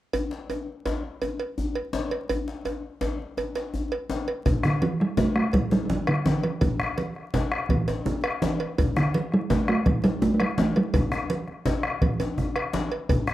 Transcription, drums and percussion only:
0.13 cowbell, djembe bass
0.31 djembe slap
0.50 cowbell, djembe tone
0.86 cowbell, djembe slap, djembe bass
1.04 djembe slap
1.22 cowbell, djembe slap, djembe tone
1.39 cowbell
1.58 djembe bass
1.75 cowbell, djembe slap
1.93 djembe slap, djembe tone
2.11 cowbell
2.29 cowbell, djembe bass
2.48 djembe slap
2.65 cowbell, djembe tone
3.01 cowbell, djembe slap, djembe bass
3.19 djembe slap
3.37 cowbell, djembe slap, djembe tone
3.55 cowbell, djembe slap
3.74 djembe bass
3.92 cowbell, djembe slap
4.10 djembe slap, djembe tone
4.28 cowbell
4.46 bombo low, cowbell, djembe bass, low conga
4.63 bombo rim, djembe slap, high conga, djembe tone
4.82 cowbell, high conga
5.00 bombo rim
5.17 bombo rim, cowbell, djembe slap, djembe tone, djembe bass, low conga
5.36 bombo rim
5.53 bombo low, cowbell, high conga
5.71 djembe slap, djembe tone
5.89 djembe bass, low conga
6.07 bombo rim, cowbell
6.26 bombo rim, djembe slap, djembe tone, high conga
6.43 bombo rim, cowbell, high conga
6.61 bombo low, cowbell, low conga, djembe bass
6.80 bombo rim, djembe tone, high conga
6.98 cowbell, high conga
7.16 bombo rim
7.34 bombo rim, cowbell, djembe slap, djembe tone, djembe bass, low conga
7.51 bombo rim, djembe slap
7.69 bombo low, cowbell, high conga
7.88 cowbell, djembe slap, djembe tone
8.06 djembe bass, low conga
8.24 bombo rim, cowbell, djembe slap
8.42 bombo rim, djembe slap, high conga, djembe tone
8.60 bombo rim, cowbell, high conga
8.78 bombo low, cowbell, low conga, djembe bass
8.96 bombo rim, djembe slap, djembe tone, high conga
9.14 cowbell, high conga
9.32 bombo rim
9.50 bombo rim, cowbell, djembe slap, djembe tone, djembe bass, low conga
9.68 bombo rim, djembe slap
9.86 bombo low, cowbell, high conga
10.04 cowbell, djembe slap, djembe tone
10.22 djembe bass, low conga
10.40 bombo rim, cowbell, djembe slap
10.58 bombo rim, djembe slap, high conga, djembe tone
10.76 bombo rim, cowbell, high conga
10.94 bombo rim, bombo low, cowbell, low conga, djembe bass
11.12 bombo rim, djembe slap, djembe tone
11.30 cowbell, djembe slap, high conga
11.48 bombo rim, djembe slap, high conga
11.66 cowbell, djembe slap, djembe tone, high conga, djembe bass, low conga
11.83 bombo rim, djembe slap, high conga
12.01 bombo low, cowbell, high conga
12.20 cowbell, djembe slap, djembe tone
12.38 bombo rim, high conga, djembe bass, low conga
12.56 bombo rim, cowbell, djembe slap, high conga
12.73 djembe slap, djembe tone, high conga
12.91 cowbell, djembe slap
13.09 bombo low, cowbell, djembe bass, low conga
13.27 bombo rim, djembe slap, djembe tone, high conga

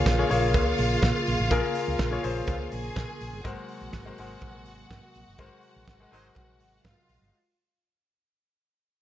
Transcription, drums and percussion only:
0.06 kick, snare, closed hi-hat, cowbell
0.31 open hi-hat
0.54 kick, closed hi-hat, cowbell
0.78 open hi-hat
1.02 kick, snare, closed hi-hat, cowbell
1.27 open hi-hat
1.51 kick, closed hi-hat, cowbell
1.75 open hi-hat
1.99 kick, snare, closed hi-hat, cowbell
2.24 open hi-hat
2.47 kick, closed hi-hat, cowbell
2.72 open hi-hat
2.96 kick, snare, closed hi-hat, cowbell
3.21 open hi-hat
3.45 kick, closed hi-hat, cowbell
3.68 open hi-hat
3.93 kick, snare, closed hi-hat, cowbell
4.18 open hi-hat
4.41 kick, closed hi-hat, cowbell
4.66 open hi-hat
4.91 kick, snare, closed hi-hat, cowbell
5.15 open hi-hat
5.38 kick, closed hi-hat, cowbell
5.63 open hi-hat
5.88 kick, snare, closed hi-hat, cowbell
6.13 open hi-hat
6.35 kick, closed hi-hat, cowbell
6.60 open hi-hat
6.85 kick, snare, closed hi-hat, cowbell
7.09 open hi-hat

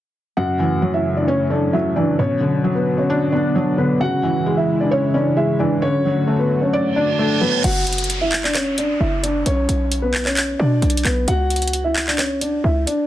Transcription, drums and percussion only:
7.64 closed hi-hat, crash
7.87 closed hi-hat
7.93 closed hi-hat
7.98 closed hi-hat
8.04 closed hi-hat
8.10 closed hi-hat
8.32 clap
8.44 clap
8.55 clap, closed hi-hat
8.78 closed hi-hat
9.24 closed hi-hat
9.46 closed hi-hat
9.69 closed hi-hat
9.92 closed hi-hat
10.14 clap
10.26 clap
10.37 clap, closed hi-hat
10.82 closed hi-hat
10.90 closed hi-hat
10.97 closed hi-hat
11.05 clap, closed hi-hat
11.28 closed hi-hat
11.50 closed hi-hat
11.56 closed hi-hat
11.62 closed hi-hat
11.68 closed hi-hat
11.73 closed hi-hat
11.96 clap
12.07 clap
12.19 clap, closed hi-hat
12.41 closed hi-hat
12.87 closed hi-hat

